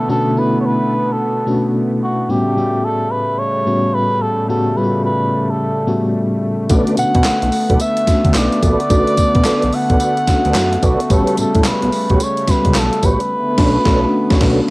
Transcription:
Already playing: fm electric piano B2 A3 C#4 D4 E4 F#4, analog synth pad D3 A3 B3, muted trumpet A4
0.09 fm electric piano B2 A3 C#4 D4 F#4, muted trumpet A4
0.36 fm electric piano B2 A3 C#4 D4 E4, muted trumpet B4
0.61 muted trumpet C#5
0.66 muted trumpet B4
1.12 muted trumpet A4
1.46 fm electric piano B2 A3 C#4 D4 F#4
2.03 muted trumpet F#4
2.29 fm electric piano A2 G3 B3 C#4 F#4, analog synth pad C#3 G3 A3, muted trumpet G4
2.57 fm electric piano A2 G3 B3 C#4 F#4
2.84 muted trumpet A4
3.11 muted trumpet B4
3.39 muted trumpet C#5
3.66 fm electric piano A2 G3 B3 C#4 F#4
3.94 muted trumpet B4
4.22 muted trumpet A4
4.49 fm electric piano A2 G3 B3 C#4 F#4, muted trumpet A4
4.77 fm electric piano A2 G3 B3 C#4 F4, muted trumpet B4
4.84 fm electric piano F#4
5.05 muted trumpet B4
5.50 muted trumpet A4
5.87 fm electric piano A2 G3 B3 C#4 F#4
6.69 analog synth bass B1, analog synth pad D3 B3, fm electric piano A3 C#4 D4 F#4, tonewheel organ F#4 A4 B4 D5, kick, closed hi-hat, tambourine
6.87 closed hi-hat
6.97 analog synth bass B2, fm electric piano A3 C#4 D4 F#4, muted trumpet F#5, closed hi-hat, tambourine
7.15 analog synth bass B2, kick, closed hi-hat
7.24 analog synth bass B1, snare, clap, closed hi-hat, tambourine
7.42 analog synth bass B1, closed hi-hat
7.52 open hi-hat
7.70 analog synth bass B1, tonewheel organ F#4 A4 B4 D5, kick, closed hi-hat
7.80 muted trumpet E5, closed hi-hat, tambourine
7.97 closed hi-hat
8.07 analog synth bass D2, fm electric piano A3 C#4 D4 F#4, kick, snare, closed hi-hat, tambourine
8.25 analog synth bass D2, kick, closed hi-hat
8.34 analog synth bass B1, muted trumpet D5, snare, clap, closed hi-hat, tambourine
8.52 closed hi-hat
8.62 analog synth bass A#1, tonewheel organ F#4 A4 B4 D5, muted trumpet D5, kick, closed hi-hat, tambourine
8.80 closed hi-hat
8.89 analog synth bass B1, fm electric piano A3 C#4 D4 F#4, tonewheel organ F#4 A4 B4 D5, kick, closed hi-hat, tambourine
9.07 closed hi-hat
9.17 analog synth bass B2, fm electric piano A3 B3 D4 F#4, kick, closed hi-hat, tambourine
9.35 analog synth bass B2, kick, closed hi-hat
9.44 analog synth bass B1, tonewheel organ F#4 A4 B4 D5, snare, clap, closed hi-hat, tambourine
9.62 analog synth bass B1, closed hi-hat
9.73 muted trumpet F#5, open hi-hat
9.89 analog synth bass B1, tonewheel organ F#4 A4 B4 D5, kick, closed hi-hat
10.00 tonewheel organ F#4 A4 B4 D5, closed hi-hat, tambourine
10.17 closed hi-hat
10.27 analog synth bass D2, fm electric piano A3 C#4 D4 F#4, kick, snare, closed hi-hat, tambourine
10.45 analog synth bass D2, tonewheel organ F#4 A4 B4 D5, closed hi-hat
10.54 analog synth bass F#2, snare, clap, closed hi-hat, tambourine
10.73 closed hi-hat
10.83 analog synth bass B1, tonewheel organ F#4 A4 B4 D5, muted trumpet F#4, kick, closed hi-hat, tambourine
11.00 closed hi-hat
11.10 analog synth bass A1, analog synth pad C#3 G3, fm electric piano G3 B3 C#4 F#4, tonewheel organ F#4 G4 B4 C#5, muted trumpet A4, kick, closed hi-hat, tambourine
11.27 closed hi-hat
11.37 analog synth bass A2, fm electric piano G3 B3 C#4 F#4, muted trumpet A4, closed hi-hat, tambourine
11.55 analog synth bass A2, kick, closed hi-hat
11.64 analog synth bass B1, muted trumpet B4, snare, clap, closed hi-hat, tambourine
11.82 analog synth bass B1, closed hi-hat
11.93 open hi-hat
12.10 analog synth bass B1, tonewheel organ F#4 G4 B4 C#5, kick, closed hi-hat
12.20 muted trumpet C#5, closed hi-hat, tambourine
12.37 closed hi-hat
12.48 analog synth bass C#2, fm electric piano G3 B3 C#4 F#4, muted trumpet B4, kick, snare, closed hi-hat, tambourine
12.65 analog synth bass C#2, kick, closed hi-hat
12.74 analog synth bass B1, snare, clap, closed hi-hat, tambourine
12.78 muted trumpet A4
12.93 closed hi-hat
13.03 analog synth bass A#1, tonewheel organ F#4 G4 B4 C#5, muted trumpet B4, kick, closed hi-hat, tambourine
13.20 closed hi-hat
13.31 analog synth pad D3 A3 B3
13.57 analog synth bass B1, fm electric piano A3 C#4 D4 F#4, tonewheel organ D4 A4 B4 C#5, kick, snare, crash
13.85 analog synth bass B1, fm electric piano A3 C#4 D4 F#4, tonewheel organ D4 A4 B4 C#5, kick, snare
14.30 analog synth bass B1, fm electric piano A3 C#4 D4, tonewheel organ D4 A4 B4 C#5, kick, snare
14.38 analog synth bass B1, fm electric piano A3 C#4 D4 F#4, tonewheel organ D4 A4 B4 C#5, kick, snare, crash
14.48 fm electric piano F#4

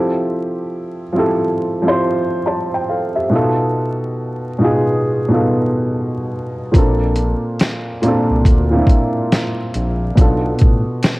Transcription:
Already playing: upright piano F3 C4 E4 G4 A4
1.13 upright piano F3 C4 E4
1.17 upright piano G4 A4
1.82 upright piano F3 C4 E4
1.86 upright piano G4 C5
2.46 upright piano C5 A5
2.74 upright piano G5
2.89 upright piano A4 F5
3.15 upright piano G4 E5
3.29 upright piano B2 B3 D#4
3.34 upright piano F4 A4
4.58 upright piano B2 B3 D#4
4.63 upright piano F4 G#4
5.28 upright piano B2 B3 D#4
5.33 upright piano F4 A4
6.72 analog synth bass A#1, upright piano A#2 A#3 C4, kick, closed hi-hat
6.76 upright piano D4 A4
7.16 closed hi-hat
7.59 snare, closed hi-hat
8.02 upright piano A#2 A#3 C4, closed hi-hat
8.06 upright piano D4 A4
8.30 analog synth bass C2
8.45 analog synth bass D2, kick, closed hi-hat
8.71 upright piano A#2 A#3 C4
8.76 upright piano D4 E4
8.87 kick, closed hi-hat
9.32 snare, closed hi-hat
9.74 analog synth bass A#1, closed hi-hat
10.15 analog synth bass B1, upright piano B2 B3 D4, kick, closed hi-hat
10.20 upright piano F4 A4
10.59 analog synth bass A1, kick, closed hi-hat
11.03 snare, closed hi-hat

